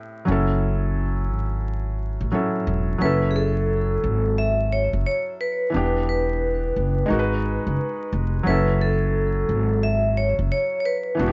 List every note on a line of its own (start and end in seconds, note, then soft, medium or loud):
0.00 0.22 A2 medium
0.00 0.23 A3 medium
0.00 0.28 C4 medium
0.00 0.26 G4 medium
0.25 1.31 F#1 loud
0.25 2.27 F#3 medium
0.25 2.28 C#4 medium
0.30 2.29 E4 medium
0.30 2.30 A4 medium
1.31 2.16 G#1 medium
2.21 2.30 A1 medium
2.32 2.97 F#3 medium
2.32 2.99 C#4 medium
2.32 3.01 E4 soft
2.32 3.02 A4 medium
2.67 2.95 E1 medium
2.98 3.99 F#1 loud
2.98 5.68 F#3 medium
2.98 5.69 C#4 medium
2.98 3.31 B4 loud
3.03 5.70 E4 medium
3.03 5.71 A4 medium
3.31 3.35 G#4 medium
3.36 4.40 A4 medium
4.04 4.89 G#1 medium
4.38 4.73 E5 loud
4.72 4.87 C#5 medium
4.93 5.03 F#1 medium
5.06 5.21 C#5 loud
5.41 6.04 B4 medium
5.70 7.05 E3 medium
5.70 7.06 B3 medium
5.74 6.72 E1 medium
5.74 7.07 D4 medium
5.74 7.08 G4 medium
6.09 8.09 B4 medium
6.76 7.04 F#1 medium
7.06 8.41 G#3 medium
7.06 8.42 D#4 medium
7.10 7.56 G#1 medium
7.10 8.43 F#4 medium
7.10 7.19 A#4 medium
7.19 8.48 B4 medium
7.67 7.76 F#1 medium
8.13 8.40 F1 loud
8.43 9.44 F#1 medium
8.43 11.13 F#3 medium
8.43 11.14 C#4 medium
8.43 8.81 B4 medium
8.48 11.15 E4 medium
8.48 11.16 A4 medium
8.81 9.86 A4 medium
9.49 10.34 G#1 medium
9.83 10.18 E5 loud
10.17 10.32 C#5 medium
10.39 10.49 F#1 medium
10.52 10.78 C#5 loud
10.80 10.85 C#5 medium
10.85 11.32 B4 medium
11.15 11.32 E3 medium
11.15 11.32 B3 medium
11.19 11.32 E1 medium
11.19 11.32 D4 medium
11.19 11.28 F#4 medium
11.28 11.32 G4 medium